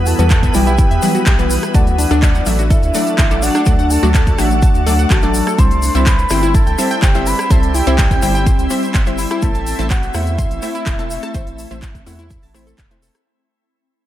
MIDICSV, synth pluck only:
0, 0, Header, 1, 2, 480
1, 0, Start_track
1, 0, Tempo, 480000
1, 1745, Time_signature, 4, 2, 24, 8
1, 14064, End_track
2, 0, Start_track
2, 0, Title_t, "Synth pluck"
2, 0, Program_c, 0, 84
2, 190, Note_on_c, 0, 52, 97
2, 190, Note_on_c, 0, 55, 89
2, 190, Note_on_c, 0, 59, 89
2, 190, Note_on_c, 0, 66, 92
2, 190, Note_on_c, 0, 71, 107
2, 259, Note_off_c, 0, 52, 0
2, 259, Note_off_c, 0, 55, 0
2, 259, Note_off_c, 0, 59, 0
2, 259, Note_off_c, 0, 66, 0
2, 259, Note_off_c, 0, 71, 0
2, 545, Note_on_c, 0, 52, 89
2, 545, Note_on_c, 0, 55, 81
2, 545, Note_on_c, 0, 59, 81
2, 545, Note_on_c, 0, 66, 80
2, 545, Note_on_c, 0, 74, 94
2, 620, Note_off_c, 0, 52, 0
2, 620, Note_off_c, 0, 55, 0
2, 620, Note_off_c, 0, 59, 0
2, 620, Note_off_c, 0, 66, 0
2, 620, Note_off_c, 0, 74, 0
2, 1025, Note_on_c, 0, 52, 97
2, 1025, Note_on_c, 0, 54, 90
2, 1025, Note_on_c, 0, 55, 88
2, 1025, Note_on_c, 0, 59, 89
2, 1025, Note_on_c, 0, 71, 109
2, 1359, Note_off_c, 0, 52, 0
2, 1359, Note_off_c, 0, 54, 0
2, 1359, Note_off_c, 0, 55, 0
2, 1359, Note_off_c, 0, 59, 0
2, 1359, Note_off_c, 0, 71, 0
2, 1389, Note_on_c, 0, 52, 94
2, 1389, Note_on_c, 0, 55, 86
2, 1389, Note_on_c, 0, 59, 89
2, 1389, Note_on_c, 0, 66, 84
2, 1389, Note_on_c, 0, 71, 105
2, 1717, Note_off_c, 0, 52, 0
2, 1717, Note_off_c, 0, 55, 0
2, 1717, Note_off_c, 0, 59, 0
2, 1717, Note_off_c, 0, 66, 0
2, 1717, Note_off_c, 0, 71, 0
2, 1745, Note_on_c, 0, 54, 95
2, 1745, Note_on_c, 0, 57, 87
2, 1745, Note_on_c, 0, 62, 89
2, 1745, Note_on_c, 0, 69, 88
2, 1745, Note_on_c, 0, 74, 103
2, 1820, Note_off_c, 0, 54, 0
2, 1820, Note_off_c, 0, 57, 0
2, 1820, Note_off_c, 0, 62, 0
2, 1820, Note_off_c, 0, 69, 0
2, 1820, Note_off_c, 0, 74, 0
2, 2109, Note_on_c, 0, 54, 95
2, 2109, Note_on_c, 0, 57, 91
2, 2109, Note_on_c, 0, 62, 88
2, 2109, Note_on_c, 0, 69, 87
2, 2109, Note_on_c, 0, 74, 107
2, 2179, Note_off_c, 0, 54, 0
2, 2179, Note_off_c, 0, 57, 0
2, 2179, Note_off_c, 0, 62, 0
2, 2179, Note_off_c, 0, 69, 0
2, 2179, Note_off_c, 0, 74, 0
2, 2464, Note_on_c, 0, 54, 86
2, 2464, Note_on_c, 0, 57, 78
2, 2464, Note_on_c, 0, 62, 79
2, 2464, Note_on_c, 0, 69, 79
2, 2464, Note_on_c, 0, 76, 99
2, 2540, Note_off_c, 0, 54, 0
2, 2540, Note_off_c, 0, 57, 0
2, 2540, Note_off_c, 0, 62, 0
2, 2540, Note_off_c, 0, 69, 0
2, 2540, Note_off_c, 0, 76, 0
2, 2944, Note_on_c, 0, 57, 87
2, 2945, Note_on_c, 0, 54, 97
2, 2945, Note_on_c, 0, 62, 90
2, 2945, Note_on_c, 0, 69, 88
2, 2945, Note_on_c, 0, 74, 112
2, 3279, Note_off_c, 0, 54, 0
2, 3279, Note_off_c, 0, 57, 0
2, 3279, Note_off_c, 0, 62, 0
2, 3279, Note_off_c, 0, 69, 0
2, 3279, Note_off_c, 0, 74, 0
2, 3309, Note_on_c, 0, 54, 95
2, 3309, Note_on_c, 0, 57, 86
2, 3309, Note_on_c, 0, 62, 88
2, 3309, Note_on_c, 0, 69, 87
2, 3309, Note_on_c, 0, 74, 105
2, 3637, Note_off_c, 0, 54, 0
2, 3637, Note_off_c, 0, 57, 0
2, 3637, Note_off_c, 0, 62, 0
2, 3637, Note_off_c, 0, 69, 0
2, 3637, Note_off_c, 0, 74, 0
2, 3665, Note_on_c, 0, 54, 97
2, 3665, Note_on_c, 0, 57, 88
2, 3665, Note_on_c, 0, 62, 86
2, 3665, Note_on_c, 0, 69, 89
2, 3665, Note_on_c, 0, 74, 107
2, 3740, Note_off_c, 0, 54, 0
2, 3740, Note_off_c, 0, 57, 0
2, 3740, Note_off_c, 0, 62, 0
2, 3740, Note_off_c, 0, 69, 0
2, 3740, Note_off_c, 0, 74, 0
2, 4029, Note_on_c, 0, 54, 98
2, 4029, Note_on_c, 0, 57, 91
2, 4029, Note_on_c, 0, 62, 88
2, 4029, Note_on_c, 0, 69, 86
2, 4029, Note_on_c, 0, 74, 108
2, 4099, Note_off_c, 0, 54, 0
2, 4099, Note_off_c, 0, 57, 0
2, 4099, Note_off_c, 0, 62, 0
2, 4099, Note_off_c, 0, 69, 0
2, 4099, Note_off_c, 0, 74, 0
2, 4385, Note_on_c, 0, 54, 86
2, 4385, Note_on_c, 0, 57, 82
2, 4385, Note_on_c, 0, 62, 80
2, 4385, Note_on_c, 0, 69, 81
2, 4385, Note_on_c, 0, 76, 96
2, 4460, Note_off_c, 0, 54, 0
2, 4460, Note_off_c, 0, 57, 0
2, 4460, Note_off_c, 0, 62, 0
2, 4460, Note_off_c, 0, 69, 0
2, 4460, Note_off_c, 0, 76, 0
2, 4865, Note_on_c, 0, 54, 98
2, 4865, Note_on_c, 0, 57, 90
2, 4865, Note_on_c, 0, 62, 87
2, 4865, Note_on_c, 0, 69, 86
2, 4865, Note_on_c, 0, 74, 105
2, 5199, Note_off_c, 0, 54, 0
2, 5199, Note_off_c, 0, 57, 0
2, 5199, Note_off_c, 0, 62, 0
2, 5199, Note_off_c, 0, 69, 0
2, 5199, Note_off_c, 0, 74, 0
2, 5229, Note_on_c, 0, 54, 98
2, 5229, Note_on_c, 0, 57, 88
2, 5229, Note_on_c, 0, 62, 86
2, 5229, Note_on_c, 0, 69, 89
2, 5229, Note_on_c, 0, 74, 108
2, 5557, Note_off_c, 0, 54, 0
2, 5557, Note_off_c, 0, 57, 0
2, 5557, Note_off_c, 0, 62, 0
2, 5557, Note_off_c, 0, 69, 0
2, 5557, Note_off_c, 0, 74, 0
2, 5585, Note_on_c, 0, 55, 93
2, 5585, Note_on_c, 0, 60, 92
2, 5585, Note_on_c, 0, 64, 91
2, 5585, Note_on_c, 0, 72, 87
2, 5585, Note_on_c, 0, 76, 110
2, 5660, Note_off_c, 0, 55, 0
2, 5660, Note_off_c, 0, 60, 0
2, 5660, Note_off_c, 0, 64, 0
2, 5660, Note_off_c, 0, 72, 0
2, 5660, Note_off_c, 0, 76, 0
2, 5949, Note_on_c, 0, 55, 101
2, 5949, Note_on_c, 0, 60, 87
2, 5949, Note_on_c, 0, 64, 92
2, 5949, Note_on_c, 0, 72, 88
2, 5949, Note_on_c, 0, 76, 109
2, 6019, Note_off_c, 0, 55, 0
2, 6019, Note_off_c, 0, 60, 0
2, 6019, Note_off_c, 0, 64, 0
2, 6019, Note_off_c, 0, 72, 0
2, 6019, Note_off_c, 0, 76, 0
2, 6305, Note_on_c, 0, 55, 87
2, 6305, Note_on_c, 0, 60, 82
2, 6305, Note_on_c, 0, 64, 81
2, 6305, Note_on_c, 0, 72, 81
2, 6305, Note_on_c, 0, 79, 97
2, 6380, Note_off_c, 0, 55, 0
2, 6380, Note_off_c, 0, 60, 0
2, 6380, Note_off_c, 0, 64, 0
2, 6380, Note_off_c, 0, 72, 0
2, 6380, Note_off_c, 0, 79, 0
2, 6785, Note_on_c, 0, 55, 94
2, 6785, Note_on_c, 0, 60, 89
2, 6785, Note_on_c, 0, 64, 92
2, 6785, Note_on_c, 0, 72, 88
2, 6785, Note_on_c, 0, 76, 105
2, 7119, Note_off_c, 0, 76, 0
2, 7120, Note_off_c, 0, 55, 0
2, 7120, Note_off_c, 0, 60, 0
2, 7120, Note_off_c, 0, 64, 0
2, 7120, Note_off_c, 0, 72, 0
2, 7150, Note_on_c, 0, 55, 97
2, 7150, Note_on_c, 0, 60, 88
2, 7150, Note_on_c, 0, 64, 87
2, 7150, Note_on_c, 0, 72, 87
2, 7150, Note_on_c, 0, 76, 106
2, 7477, Note_off_c, 0, 55, 0
2, 7477, Note_off_c, 0, 60, 0
2, 7477, Note_off_c, 0, 64, 0
2, 7477, Note_off_c, 0, 72, 0
2, 7477, Note_off_c, 0, 76, 0
2, 7505, Note_on_c, 0, 55, 95
2, 7505, Note_on_c, 0, 60, 89
2, 7505, Note_on_c, 0, 64, 89
2, 7505, Note_on_c, 0, 72, 90
2, 7505, Note_on_c, 0, 76, 105
2, 7580, Note_off_c, 0, 55, 0
2, 7580, Note_off_c, 0, 60, 0
2, 7580, Note_off_c, 0, 64, 0
2, 7580, Note_off_c, 0, 72, 0
2, 7580, Note_off_c, 0, 76, 0
2, 7870, Note_on_c, 0, 55, 94
2, 7870, Note_on_c, 0, 60, 90
2, 7870, Note_on_c, 0, 64, 88
2, 7870, Note_on_c, 0, 72, 88
2, 7870, Note_on_c, 0, 76, 110
2, 7939, Note_off_c, 0, 55, 0
2, 7939, Note_off_c, 0, 60, 0
2, 7939, Note_off_c, 0, 64, 0
2, 7939, Note_off_c, 0, 72, 0
2, 7939, Note_off_c, 0, 76, 0
2, 8225, Note_on_c, 0, 55, 87
2, 8225, Note_on_c, 0, 60, 80
2, 8225, Note_on_c, 0, 64, 81
2, 8225, Note_on_c, 0, 72, 78
2, 8225, Note_on_c, 0, 79, 93
2, 8300, Note_off_c, 0, 55, 0
2, 8300, Note_off_c, 0, 60, 0
2, 8300, Note_off_c, 0, 64, 0
2, 8300, Note_off_c, 0, 72, 0
2, 8300, Note_off_c, 0, 79, 0
2, 8704, Note_on_c, 0, 55, 96
2, 8704, Note_on_c, 0, 60, 90
2, 8704, Note_on_c, 0, 64, 89
2, 8704, Note_on_c, 0, 72, 92
2, 8704, Note_on_c, 0, 76, 108
2, 9039, Note_off_c, 0, 55, 0
2, 9039, Note_off_c, 0, 60, 0
2, 9039, Note_off_c, 0, 64, 0
2, 9039, Note_off_c, 0, 72, 0
2, 9039, Note_off_c, 0, 76, 0
2, 9069, Note_on_c, 0, 55, 97
2, 9069, Note_on_c, 0, 60, 87
2, 9069, Note_on_c, 0, 64, 89
2, 9069, Note_on_c, 0, 72, 90
2, 9069, Note_on_c, 0, 76, 106
2, 9397, Note_off_c, 0, 55, 0
2, 9397, Note_off_c, 0, 60, 0
2, 9397, Note_off_c, 0, 64, 0
2, 9397, Note_off_c, 0, 72, 0
2, 9397, Note_off_c, 0, 76, 0
2, 9424, Note_on_c, 0, 57, 96
2, 9424, Note_on_c, 0, 60, 92
2, 9424, Note_on_c, 0, 64, 90
2, 9424, Note_on_c, 0, 72, 86
2, 9424, Note_on_c, 0, 76, 105
2, 9500, Note_off_c, 0, 57, 0
2, 9500, Note_off_c, 0, 60, 0
2, 9500, Note_off_c, 0, 64, 0
2, 9500, Note_off_c, 0, 72, 0
2, 9500, Note_off_c, 0, 76, 0
2, 9789, Note_on_c, 0, 57, 98
2, 9789, Note_on_c, 0, 60, 93
2, 9789, Note_on_c, 0, 64, 86
2, 9789, Note_on_c, 0, 72, 86
2, 9789, Note_on_c, 0, 76, 107
2, 9859, Note_off_c, 0, 57, 0
2, 9859, Note_off_c, 0, 60, 0
2, 9859, Note_off_c, 0, 64, 0
2, 9859, Note_off_c, 0, 72, 0
2, 9859, Note_off_c, 0, 76, 0
2, 10144, Note_on_c, 0, 57, 89
2, 10144, Note_on_c, 0, 60, 82
2, 10144, Note_on_c, 0, 64, 78
2, 10144, Note_on_c, 0, 72, 80
2, 10144, Note_on_c, 0, 78, 97
2, 10220, Note_off_c, 0, 57, 0
2, 10220, Note_off_c, 0, 60, 0
2, 10220, Note_off_c, 0, 64, 0
2, 10220, Note_off_c, 0, 72, 0
2, 10220, Note_off_c, 0, 78, 0
2, 10624, Note_on_c, 0, 57, 98
2, 10624, Note_on_c, 0, 60, 91
2, 10624, Note_on_c, 0, 64, 91
2, 10624, Note_on_c, 0, 72, 89
2, 10624, Note_on_c, 0, 76, 111
2, 10959, Note_off_c, 0, 57, 0
2, 10959, Note_off_c, 0, 60, 0
2, 10959, Note_off_c, 0, 64, 0
2, 10959, Note_off_c, 0, 72, 0
2, 10959, Note_off_c, 0, 76, 0
2, 10989, Note_on_c, 0, 57, 96
2, 10989, Note_on_c, 0, 60, 87
2, 10989, Note_on_c, 0, 64, 86
2, 10989, Note_on_c, 0, 72, 89
2, 10989, Note_on_c, 0, 76, 106
2, 11317, Note_off_c, 0, 57, 0
2, 11317, Note_off_c, 0, 60, 0
2, 11317, Note_off_c, 0, 64, 0
2, 11317, Note_off_c, 0, 72, 0
2, 11317, Note_off_c, 0, 76, 0
2, 11344, Note_on_c, 0, 57, 94
2, 11344, Note_on_c, 0, 60, 90
2, 11344, Note_on_c, 0, 64, 88
2, 11344, Note_on_c, 0, 72, 89
2, 11344, Note_on_c, 0, 76, 107
2, 11420, Note_off_c, 0, 57, 0
2, 11420, Note_off_c, 0, 60, 0
2, 11420, Note_off_c, 0, 64, 0
2, 11420, Note_off_c, 0, 72, 0
2, 11420, Note_off_c, 0, 76, 0
2, 11709, Note_on_c, 0, 57, 98
2, 11709, Note_on_c, 0, 60, 92
2, 11709, Note_on_c, 0, 64, 90
2, 11709, Note_on_c, 0, 72, 89
2, 11709, Note_on_c, 0, 76, 110
2, 11779, Note_off_c, 0, 57, 0
2, 11779, Note_off_c, 0, 60, 0
2, 11779, Note_off_c, 0, 64, 0
2, 11779, Note_off_c, 0, 72, 0
2, 11779, Note_off_c, 0, 76, 0
2, 12064, Note_on_c, 0, 57, 87
2, 12064, Note_on_c, 0, 60, 81
2, 12064, Note_on_c, 0, 64, 80
2, 12064, Note_on_c, 0, 72, 80
2, 12064, Note_on_c, 0, 78, 101
2, 12140, Note_off_c, 0, 57, 0
2, 12140, Note_off_c, 0, 60, 0
2, 12140, Note_off_c, 0, 64, 0
2, 12140, Note_off_c, 0, 72, 0
2, 12140, Note_off_c, 0, 78, 0
2, 12544, Note_on_c, 0, 57, 97
2, 12544, Note_on_c, 0, 60, 88
2, 12544, Note_on_c, 0, 72, 89
2, 12544, Note_on_c, 0, 76, 108
2, 12545, Note_on_c, 0, 64, 92
2, 12879, Note_off_c, 0, 57, 0
2, 12879, Note_off_c, 0, 60, 0
2, 12879, Note_off_c, 0, 64, 0
2, 12879, Note_off_c, 0, 72, 0
2, 12879, Note_off_c, 0, 76, 0
2, 12909, Note_on_c, 0, 57, 98
2, 12909, Note_on_c, 0, 60, 85
2, 12909, Note_on_c, 0, 64, 90
2, 12909, Note_on_c, 0, 72, 91
2, 12909, Note_on_c, 0, 76, 106
2, 13237, Note_off_c, 0, 57, 0
2, 13237, Note_off_c, 0, 60, 0
2, 13237, Note_off_c, 0, 64, 0
2, 13237, Note_off_c, 0, 72, 0
2, 13237, Note_off_c, 0, 76, 0
2, 14064, End_track
0, 0, End_of_file